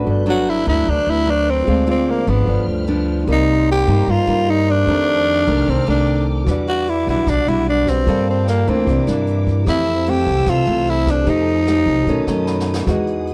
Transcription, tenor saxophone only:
0, 0, Header, 1, 2, 480
1, 0, Start_track
1, 0, Key_signature, 1, "major"
1, 0, Tempo, 400267
1, 77, Time_signature, 4, 2, 24, 8
1, 15996, End_track
2, 0, Start_track
2, 0, Title_t, "Tenor saxophone"
2, 0, Program_c, 0, 66
2, 352, Note_on_c, 0, 66, 94
2, 594, Note_on_c, 0, 64, 88
2, 612, Note_off_c, 0, 66, 0
2, 815, Note_off_c, 0, 64, 0
2, 823, Note_on_c, 0, 64, 94
2, 1072, Note_on_c, 0, 62, 89
2, 1090, Note_off_c, 0, 64, 0
2, 1316, Note_on_c, 0, 64, 93
2, 1334, Note_off_c, 0, 62, 0
2, 1559, Note_on_c, 0, 62, 95
2, 1577, Note_off_c, 0, 64, 0
2, 1799, Note_on_c, 0, 60, 95
2, 1817, Note_off_c, 0, 62, 0
2, 2257, Note_off_c, 0, 60, 0
2, 2289, Note_on_c, 0, 60, 82
2, 2517, Note_on_c, 0, 58, 73
2, 2535, Note_off_c, 0, 60, 0
2, 2744, Note_on_c, 0, 59, 83
2, 2762, Note_off_c, 0, 58, 0
2, 3210, Note_off_c, 0, 59, 0
2, 3976, Note_on_c, 0, 63, 98
2, 4394, Note_off_c, 0, 63, 0
2, 4451, Note_on_c, 0, 67, 98
2, 4921, Note_on_c, 0, 65, 101
2, 4939, Note_off_c, 0, 67, 0
2, 5395, Note_on_c, 0, 63, 97
2, 5413, Note_off_c, 0, 65, 0
2, 5642, Note_on_c, 0, 62, 103
2, 5660, Note_off_c, 0, 63, 0
2, 6836, Note_on_c, 0, 60, 81
2, 6854, Note_off_c, 0, 62, 0
2, 7055, Note_off_c, 0, 60, 0
2, 7073, Note_on_c, 0, 62, 79
2, 7501, Note_off_c, 0, 62, 0
2, 8014, Note_on_c, 0, 66, 95
2, 8260, Note_on_c, 0, 64, 92
2, 8278, Note_off_c, 0, 66, 0
2, 8487, Note_off_c, 0, 64, 0
2, 8511, Note_on_c, 0, 64, 86
2, 8747, Note_on_c, 0, 62, 92
2, 8765, Note_off_c, 0, 64, 0
2, 8976, Note_on_c, 0, 64, 93
2, 8994, Note_off_c, 0, 62, 0
2, 9205, Note_off_c, 0, 64, 0
2, 9225, Note_on_c, 0, 62, 89
2, 9462, Note_on_c, 0, 60, 91
2, 9480, Note_off_c, 0, 62, 0
2, 9928, Note_off_c, 0, 60, 0
2, 9952, Note_on_c, 0, 60, 79
2, 10157, Note_off_c, 0, 60, 0
2, 10177, Note_on_c, 0, 58, 80
2, 10418, Note_on_c, 0, 60, 75
2, 10436, Note_off_c, 0, 58, 0
2, 10886, Note_off_c, 0, 60, 0
2, 11620, Note_on_c, 0, 64, 97
2, 12102, Note_on_c, 0, 67, 96
2, 12120, Note_off_c, 0, 64, 0
2, 12581, Note_on_c, 0, 65, 93
2, 12599, Note_off_c, 0, 67, 0
2, 13066, Note_on_c, 0, 64, 93
2, 13084, Note_off_c, 0, 65, 0
2, 13318, Note_on_c, 0, 62, 83
2, 13336, Note_off_c, 0, 64, 0
2, 13544, Note_on_c, 0, 63, 93
2, 13562, Note_off_c, 0, 62, 0
2, 14970, Note_off_c, 0, 63, 0
2, 15996, End_track
0, 0, End_of_file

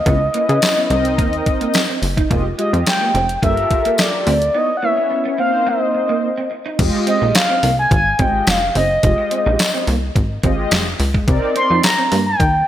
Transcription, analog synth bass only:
0, 0, Header, 1, 2, 480
1, 0, Start_track
1, 0, Tempo, 560748
1, 53, Time_signature, 4, 2, 24, 8
1, 10852, End_track
2, 0, Start_track
2, 0, Title_t, "Analog synth bass"
2, 0, Program_c, 0, 38
2, 53, Note_on_c, 0, 37, 109
2, 252, Note_off_c, 0, 37, 0
2, 420, Note_on_c, 0, 49, 99
2, 514, Note_off_c, 0, 49, 0
2, 773, Note_on_c, 0, 36, 93
2, 1014, Note_on_c, 0, 39, 99
2, 1027, Note_off_c, 0, 36, 0
2, 1212, Note_off_c, 0, 39, 0
2, 1732, Note_on_c, 0, 30, 91
2, 1931, Note_off_c, 0, 30, 0
2, 1975, Note_on_c, 0, 29, 105
2, 2173, Note_off_c, 0, 29, 0
2, 2339, Note_on_c, 0, 41, 93
2, 2433, Note_off_c, 0, 41, 0
2, 2693, Note_on_c, 0, 29, 93
2, 2892, Note_off_c, 0, 29, 0
2, 2934, Note_on_c, 0, 31, 97
2, 3132, Note_off_c, 0, 31, 0
2, 3654, Note_on_c, 0, 38, 93
2, 3853, Note_off_c, 0, 38, 0
2, 5813, Note_on_c, 0, 29, 107
2, 5918, Note_off_c, 0, 29, 0
2, 6181, Note_on_c, 0, 34, 90
2, 6274, Note_off_c, 0, 34, 0
2, 6534, Note_on_c, 0, 36, 86
2, 6732, Note_off_c, 0, 36, 0
2, 6773, Note_on_c, 0, 32, 101
2, 6972, Note_off_c, 0, 32, 0
2, 7012, Note_on_c, 0, 32, 96
2, 7211, Note_off_c, 0, 32, 0
2, 7255, Note_on_c, 0, 29, 95
2, 7453, Note_off_c, 0, 29, 0
2, 7495, Note_on_c, 0, 30, 96
2, 7693, Note_off_c, 0, 30, 0
2, 7733, Note_on_c, 0, 29, 105
2, 7838, Note_off_c, 0, 29, 0
2, 8102, Note_on_c, 0, 34, 92
2, 8194, Note_off_c, 0, 34, 0
2, 8454, Note_on_c, 0, 36, 97
2, 8652, Note_off_c, 0, 36, 0
2, 8694, Note_on_c, 0, 32, 96
2, 8892, Note_off_c, 0, 32, 0
2, 8933, Note_on_c, 0, 32, 93
2, 9132, Note_off_c, 0, 32, 0
2, 9175, Note_on_c, 0, 29, 95
2, 9373, Note_off_c, 0, 29, 0
2, 9414, Note_on_c, 0, 37, 99
2, 9612, Note_off_c, 0, 37, 0
2, 9654, Note_on_c, 0, 36, 104
2, 9759, Note_off_c, 0, 36, 0
2, 10020, Note_on_c, 0, 41, 90
2, 10113, Note_off_c, 0, 41, 0
2, 10375, Note_on_c, 0, 43, 93
2, 10573, Note_off_c, 0, 43, 0
2, 10613, Note_on_c, 0, 39, 92
2, 10812, Note_off_c, 0, 39, 0
2, 10852, End_track
0, 0, End_of_file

